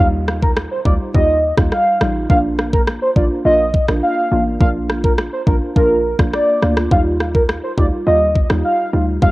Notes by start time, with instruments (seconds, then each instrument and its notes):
Already playing: downlifter
0.00 808-style bass D#2, synth stab G3 D#4 F4
0.28 cross-stick
0.42 soft synth lead A#4, kick
0.57 cross-stick
0.71 soft synth lead C5
0.85 808-style bass D2, synth stab G3 D#4 F4, soft synth lead D5, kick
1.14 808-style bass D#2, synth stab G3 D#4 F4, soft synth lead D#5, kick
1.57 808-style bass D#2, synth stab G3 D#4 F4, kick, cross-stick
1.72 soft synth lead F5, cross-stick
2.01 808-style bass A1, synth stab G3 D#4 F4, cross-stick
2.30 808-style bass A#1, synth stab A#3 D4 F4, soft synth lead F5, kick
2.59 cross-stick
2.73 soft synth lead A#4, kick
2.87 cross-stick
3.02 soft synth lead C5
3.16 808-style bass A1, synth stab A#3 D4 F4, soft synth lead D5, kick
3.45 808-style bass A#1, synth stab A#3 D4 F4, soft synth lead D#5
3.74 kick
3.88 808-style bass A#1, synth stab A#3 D4 F4, cross-stick
4.03 soft synth lead F5
4.31 808-style bass A1, synth stab A#3 D4 F4
4.60 808-style bass A#1, synth stab A#3 D4 F4, soft synth lead F5, kick
4.90 cross-stick
5.04 soft synth lead A#4, kick
5.18 cross-stick
5.33 soft synth lead C5
5.47 808-style bass A1, synth stab A#3 D4 F4, soft synth lead A#4, kick
5.76 808-style bass A#1, synth stab A#3 D4 F4, soft synth lead A#4, kick
6.19 808-style bass A#1, synth stab A#3 D4 F4, kick, cross-stick
6.33 soft synth lead D5, cross-stick
6.62 808-style bass D2, synth stab A#3 D4 F4, cross-stick
6.77 cross-stick
6.91 808-style bass D#2, synth stab G3 D#4 F4, soft synth lead F5, kick
7.20 cross-stick
7.35 soft synth lead A#4, kick
7.49 cross-stick
7.63 soft synth lead C5
7.78 808-style bass D2, synth stab G3 D#4 F4, soft synth lead D5, kick
8.06 808-style bass D#2, synth stab G3 D#4 F4, soft synth lead D#5
8.35 kick
8.50 808-style bass D#2, synth stab G3 D#4 F4, cross-stick
8.64 soft synth lead F5
8.93 808-style bass D2, synth stab G3 D#4 F4
9.22 808-style bass D#2, synth stab G3 D#4 F4, soft synth lead F5, kick